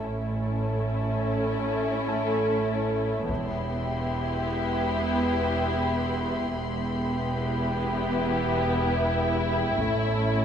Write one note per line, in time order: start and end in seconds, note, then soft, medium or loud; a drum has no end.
0.04 3.25 A1 soft
0.04 3.26 A2 soft
0.04 3.25 C#4 soft
0.04 3.25 E4 soft
0.04 3.25 A4 soft
0.04 3.26 C#5 soft
0.04 3.26 E5 soft
0.04 3.26 A5 soft
2.08 4.47 A4 soft
2.08 4.47 A5 soft
3.28 6.50 E1 medium
3.28 6.50 E2 soft
3.28 6.50 B3 medium
3.28 6.54 B3 soft
3.28 6.49 E4 medium
3.28 6.49 G4 medium
3.28 6.50 E5 soft
3.28 6.54 G5 soft
3.28 9.34 B5 soft
3.28 8.54 C6 soft
3.28 taiko soft
6.53 9.74 E1 medium
6.53 9.74 E2 medium
6.53 9.74 B3 medium
6.53 9.75 B3 soft
6.53 10.45 E4 medium
6.53 9.74 G4 medium
6.53 10.45 E5 soft
6.53 9.75 G5 soft
8.57 10.45 G4 soft
8.57 10.45 G5 soft
9.77 10.45 A1 medium
9.77 10.45 A2 medium
9.77 10.45 C#4 medium
9.77 10.45 A4 medium
9.77 10.45 C#5 soft
9.77 10.45 A5 soft
9.77 taiko soft